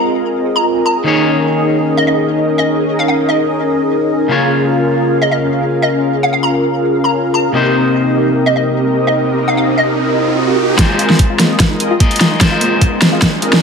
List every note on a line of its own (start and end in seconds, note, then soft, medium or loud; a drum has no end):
0.00 1.02 G#3 medium
0.00 1.04 C4 medium
0.00 1.03 F4 medium
0.00 1.04 F4 medium
0.00 1.04 G#4 medium
0.00 1.04 A#4 medium
0.00 1.04 C5 medium
0.00 1.04 D#5 medium
0.00 0.25 A#5 medium
0.56 0.84 A#5 medium
0.86 1.10 A#5 medium
1.04 4.27 D#3 medium
1.04 4.27 A#3 medium
1.04 4.28 C#4 medium
1.04 4.28 D#4 medium
1.04 4.28 G#4 medium
1.04 4.28 A#4 medium
1.04 4.28 D#5 medium
1.08 4.29 C#5 medium
1.97 2.04 D#5 medium
2.07 2.14 D#5 medium
2.58 2.69 D#5 medium
2.99 3.05 F5 medium
3.08 3.15 F5 medium
3.29 3.60 D#5 medium
4.28 7.51 C#3 medium
4.28 7.52 A#3 medium
4.28 7.52 C#4 medium
4.28 7.52 F4 medium
4.28 7.53 F4 medium
4.28 7.52 G#4 medium
4.28 7.52 A#4 medium
4.28 7.52 F5 medium
4.32 7.53 C#5 medium
5.22 5.28 D#5 medium
5.32 5.38 D#5 medium
5.82 5.93 D#5 medium
6.23 6.29 F5 medium
6.33 6.40 F5 medium
6.43 6.73 A#5 medium
7.04 7.32 A#5 medium
7.34 7.59 A#5 medium
7.53 10.76 C3 medium
7.53 10.76 A#3 medium
7.53 10.77 C4 medium
7.53 10.77 D#4 medium
7.53 10.77 G4 medium
7.53 10.77 A#4 medium
7.53 10.77 D#5 medium
7.53 riser medium
7.57 10.78 C5 medium
8.46 8.52 D#5 medium
8.56 8.63 D#5 medium
9.07 9.18 D#5 medium
9.48 9.54 F5 medium
9.57 9.64 F5 medium
9.78 10.08 D#5 medium
10.77 11.97 G#3 medium
10.77 10.82 A#3 loud
10.77 11.98 F4 medium
10.77 11.98 A#4 medium
10.77 kick medium
10.77 snare soft
10.77 closed hi-hat medium
10.77 riser medium
10.81 11.99 C5 loud
10.99 11.08 F4 medium
10.99 closed hi-hat medium
11.10 11.13 D#4 medium
11.10 snare soft
11.19 kick medium
11.19 closed hi-hat medium
11.30 11.35 F4 loud
11.39 11.43 A#3 loud
11.39 snare soft
11.39 closed hi-hat medium
11.60 11.69 F4 medium
11.60 kick medium
11.60 snare medium
11.60 closed hi-hat medium
11.70 11.73 D#4 medium
11.80 11.93 C4 loud
11.80 11.93 F4 medium
11.80 11.93 G#4 medium
11.80 11.93 A#4 medium
11.80 11.93 D#5 loud
11.80 closed hi-hat medium
11.91 11.96 F4 loud
11.99 12.38 G#3 medium
11.99 12.04 A#3 loud
11.99 12.39 F4 medium
11.99 12.39 A#4 medium
11.99 12.39 D#5 loud
11.99 kick loud
11.99 closed hi-hat medium
12.11 closed hi-hat soft
12.16 closed hi-hat medium
12.21 12.30 F4 medium
12.21 snare medium
12.21 closed hi-hat medium
12.31 12.34 D#4 medium
12.39 13.59 G#3 medium
12.39 13.40 C4 medium
12.39 13.60 F4 medium
12.39 13.40 F4 medium
12.39 13.40 G#4 medium
12.39 13.40 A#4 medium
12.39 13.61 A#4 medium
12.39 13.40 D#5 medium
12.39 kick medium
12.39 snare medium
12.39 closed hi-hat medium
12.43 13.61 C5 loud
12.52 12.57 F4 loud
12.61 12.65 A#3 loud
12.61 closed hi-hat medium
12.81 12.90 F4 medium
12.81 kick medium
12.81 closed hi-hat medium
12.92 12.95 D#4 medium
13.02 snare medium
13.02 closed hi-hat medium
13.12 13.18 F4 loud
13.22 13.26 A#3 loud
13.22 kick loud
13.22 snare medium
13.22 closed hi-hat medium
13.42 13.55 C4 loud
13.42 13.51 F4 medium
13.42 13.55 F4 medium
13.42 13.55 G#4 medium
13.42 13.55 A#4 medium
13.42 13.55 D#5 loud
13.42 closed hi-hat medium
13.53 13.56 D#4 medium
13.53 snare medium